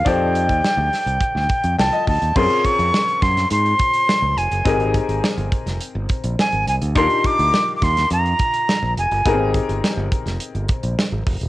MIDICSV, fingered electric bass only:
0, 0, Header, 1, 2, 480
1, 0, Start_track
1, 0, Tempo, 574713
1, 47, Time_signature, 4, 2, 24, 8
1, 9595, End_track
2, 0, Start_track
2, 0, Title_t, "Fingered electric bass"
2, 0, Program_c, 0, 33
2, 49, Note_on_c, 0, 41, 92
2, 411, Note_off_c, 0, 41, 0
2, 411, Note_on_c, 0, 39, 81
2, 501, Note_off_c, 0, 39, 0
2, 644, Note_on_c, 0, 38, 88
2, 737, Note_off_c, 0, 38, 0
2, 887, Note_on_c, 0, 36, 72
2, 979, Note_off_c, 0, 36, 0
2, 1126, Note_on_c, 0, 38, 81
2, 1219, Note_off_c, 0, 38, 0
2, 1368, Note_on_c, 0, 41, 83
2, 1460, Note_off_c, 0, 41, 0
2, 1489, Note_on_c, 0, 36, 83
2, 1580, Note_off_c, 0, 36, 0
2, 1731, Note_on_c, 0, 38, 74
2, 1822, Note_off_c, 0, 38, 0
2, 1850, Note_on_c, 0, 39, 81
2, 1942, Note_off_c, 0, 39, 0
2, 1968, Note_on_c, 0, 42, 84
2, 2060, Note_off_c, 0, 42, 0
2, 2329, Note_on_c, 0, 41, 79
2, 2421, Note_off_c, 0, 41, 0
2, 2690, Note_on_c, 0, 42, 86
2, 2873, Note_off_c, 0, 42, 0
2, 2931, Note_on_c, 0, 44, 83
2, 3114, Note_off_c, 0, 44, 0
2, 3528, Note_on_c, 0, 37, 81
2, 3621, Note_off_c, 0, 37, 0
2, 3650, Note_on_c, 0, 29, 85
2, 3742, Note_off_c, 0, 29, 0
2, 3771, Note_on_c, 0, 30, 77
2, 3862, Note_off_c, 0, 30, 0
2, 3890, Note_on_c, 0, 32, 99
2, 4165, Note_off_c, 0, 32, 0
2, 4250, Note_on_c, 0, 32, 87
2, 4342, Note_off_c, 0, 32, 0
2, 4490, Note_on_c, 0, 31, 92
2, 4582, Note_off_c, 0, 31, 0
2, 4730, Note_on_c, 0, 29, 77
2, 4822, Note_off_c, 0, 29, 0
2, 4969, Note_on_c, 0, 31, 86
2, 5061, Note_off_c, 0, 31, 0
2, 5211, Note_on_c, 0, 34, 92
2, 5303, Note_off_c, 0, 34, 0
2, 5451, Note_on_c, 0, 32, 81
2, 5543, Note_off_c, 0, 32, 0
2, 5571, Note_on_c, 0, 36, 75
2, 5663, Note_off_c, 0, 36, 0
2, 5693, Note_on_c, 0, 38, 80
2, 5809, Note_off_c, 0, 38, 0
2, 5809, Note_on_c, 0, 39, 94
2, 5902, Note_off_c, 0, 39, 0
2, 6173, Note_on_c, 0, 38, 80
2, 6264, Note_off_c, 0, 38, 0
2, 6532, Note_on_c, 0, 39, 81
2, 6715, Note_off_c, 0, 39, 0
2, 6770, Note_on_c, 0, 41, 87
2, 6953, Note_off_c, 0, 41, 0
2, 7370, Note_on_c, 0, 34, 74
2, 7462, Note_off_c, 0, 34, 0
2, 7491, Note_on_c, 0, 29, 72
2, 7583, Note_off_c, 0, 29, 0
2, 7610, Note_on_c, 0, 31, 78
2, 7702, Note_off_c, 0, 31, 0
2, 7730, Note_on_c, 0, 32, 91
2, 8005, Note_off_c, 0, 32, 0
2, 8092, Note_on_c, 0, 31, 85
2, 8183, Note_off_c, 0, 31, 0
2, 8328, Note_on_c, 0, 31, 92
2, 8421, Note_off_c, 0, 31, 0
2, 8566, Note_on_c, 0, 29, 83
2, 8659, Note_off_c, 0, 29, 0
2, 8810, Note_on_c, 0, 31, 80
2, 8901, Note_off_c, 0, 31, 0
2, 9050, Note_on_c, 0, 34, 76
2, 9142, Note_off_c, 0, 34, 0
2, 9290, Note_on_c, 0, 32, 87
2, 9382, Note_off_c, 0, 32, 0
2, 9412, Note_on_c, 0, 29, 82
2, 9503, Note_off_c, 0, 29, 0
2, 9532, Note_on_c, 0, 27, 79
2, 9595, Note_off_c, 0, 27, 0
2, 9595, End_track
0, 0, End_of_file